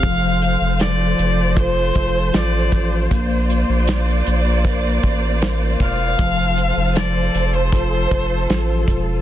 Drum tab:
HH |xxxxxxxx|xxxxxxxx|xxxxxxxx|
SD |--o---o-|--o---o-|--o---o-|
BD |o---oo-o|o---oo-o|o---oo-o|